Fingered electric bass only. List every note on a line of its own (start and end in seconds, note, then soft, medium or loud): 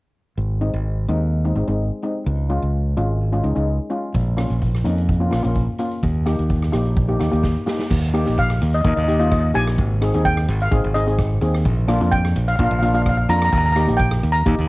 0.37 0.70 G#1 medium
0.73 1.05 G#1 medium
1.08 1.52 D#2 medium
1.55 1.67 G#1 medium
1.68 1.89 G#1 medium
2.26 2.59 C#2 medium
2.62 2.94 C#2 medium
2.97 3.40 G#1 medium
3.44 3.55 C#2 medium
3.57 3.78 C#2 medium
4.15 4.48 A#1 medium
4.50 4.82 A#1 medium
4.85 5.29 F2 medium
5.32 5.44 A#1 medium
5.45 5.66 A#1 medium
6.03 6.36 D#2 medium
6.39 6.71 D#2 medium
6.74 7.17 A#1 medium
7.21 7.32 D#2 medium
7.33 7.54 D#2 medium
7.91 8.24 D#2 loud
8.28 8.59 A#1 medium
8.62 8.83 D#2 loud
8.85 8.96 D#2 medium
8.97 9.51 D#2 medium
9.55 9.77 A#1 loud
9.79 10.11 G#1 loud
10.14 10.46 D#2 medium
10.49 10.70 G#1 loud
10.73 10.83 G#1 medium
10.84 11.38 G#1 medium
11.41 11.63 D#2 medium
11.66 11.98 A#1 loud
12.01 12.33 F2 medium
12.36 12.57 A#1 loud
12.59 12.70 A#1 loud
12.71 13.25 A#1 loud
13.29 13.51 F2 loud
13.53 13.86 D#2 loud
13.88 14.20 A#1 medium
14.23 14.44 D#2 loud
14.46 14.57 D#2 loud
14.59 14.68 D#2 medium